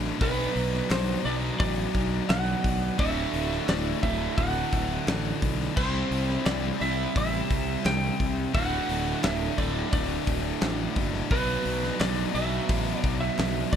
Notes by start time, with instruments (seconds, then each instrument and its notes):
Already playing: fingered electric bass A1, distorted electric guitar D2 A2 D3 A3 F#4, overdriven electric guitar D2 A2 D3, tonewheel organ A3 F#4 D5
0.05 snare
0.20 fingered electric bass B1, distorted electric guitar B2 F#3 B3 D4 F#4, overdriven electric guitar B2 F#3 B3, tonewheel organ C4 G4 D#5, electric slide guitar B4, kick, open hi-hat
0.24 distorted electric guitar B4
0.44 tonewheel organ D4 F#4 D5
0.56 fingered electric bass B1, open hi-hat
0.74 snare
0.90 fingered electric bass B1, electric slide guitar C5, snare, clap, open hi-hat
1.25 fingered electric bass B1, overdriven electric guitar B2 F#3 B3, electric slide guitar D5, open hi-hat
1.59 fingered electric bass A1, electric slide guitar D5, kick, open hi-hat
1.94 fingered electric bass B1, kick, open hi-hat
2.29 fingered electric bass B1, electric slide guitar F#5, snare, clap, open hi-hat
2.64 fingered electric bass B1, kick, open hi-hat
2.98 fingered electric bass D1, distorted electric guitar D2 A2 D3 A3, overdriven electric guitar D2 A2 D3, tonewheel organ A3 F#4 D5, electric slide guitar E5, kick, open hi-hat
3.02 distorted electric guitar F#4
3.33 fingered electric bass D1, open hi-hat
3.51 snare
3.68 fingered electric bass D1, electric slide guitar D5, snare, clap, open hi-hat
4.03 fingered electric bass D1, overdriven electric guitar D2 A2 D3, electric slide guitar E5, kick, open hi-hat
4.38 fingered electric bass D1, electric slide guitar F#5, kick, open hi-hat
4.73 fingered electric bass D1, kick, open hi-hat
5.07 fingered electric bass A1, snare, clap, open hi-hat
5.42 fingered electric bass B1, kick, open hi-hat
5.61 snare
5.76 fingered electric bass C2, distorted electric guitar C3 G3 C4 E4 G4, overdriven electric guitar C3 G3 C4, tonewheel organ C4 G4 E5, electric slide guitar C5, kick, crash
5.80 distorted electric guitar C5
6.11 fingered electric bass C2, open hi-hat
6.30 snare
6.46 fingered electric bass C2, electric slide guitar D5, snare, clap, open hi-hat
6.81 fingered electric bass C2, overdriven electric guitar C3 G3 C4, electric slide guitar E5, open hi-hat
7.16 fingered electric bass A1, electric slide guitar E5, kick, open hi-hat
7.50 fingered electric bass C2, kick, open hi-hat
7.85 fingered electric bass C2, electric slide guitar G5, snare, clap, open hi-hat
8.20 fingered electric bass C2, kick, open hi-hat
8.53 fingered electric bass D1, distorted electric guitar D2 A2 D3 A3 F#4, overdriven electric guitar D2 A2, tonewheel organ A3 F#4 D5, electric slide guitar F#5, kick, open hi-hat
8.57 overdriven electric guitar D3
8.89 fingered electric bass D1, open hi-hat
9.23 fingered electric bass D1, electric slide guitar E5, snare, clap, open hi-hat
9.58 fingered electric bass D1, overdriven electric guitar D2 A2 D3, electric slide guitar D5, kick, open hi-hat
9.93 fingered electric bass D1, electric slide guitar D5, kick, open hi-hat
10.27 fingered electric bass D1, kick, open hi-hat
10.61 fingered electric bass A1, snare, clap, open hi-hat
10.96 fingered electric bass F#1, kick, open hi-hat
11.14 snare
11.30 fingered electric bass B1, distorted electric guitar B2 F#3 B3 D4 F#4, overdriven electric guitar B2 F#3, tonewheel organ B3 F#4 D5, electric slide guitar B4, kick, open hi-hat
11.34 overdriven electric guitar B3, distorted electric guitar B4
11.65 fingered electric bass B1, open hi-hat
11.84 snare
12.00 fingered electric bass B1, electric slide guitar D5, snare, clap, open hi-hat
12.35 fingered electric bass B1, overdriven electric guitar B2 F#3 B3, electric slide guitar E5, open hi-hat
12.69 fingered electric bass A1, kick, open hi-hat
12.99 electric slide guitar D5
13.04 fingered electric bass B1, kick, open hi-hat
13.21 electric slide guitar E5
13.39 fingered electric bass B1, snare, clap, open hi-hat
13.73 fingered electric bass C2, electric slide guitar D5, kick, open hi-hat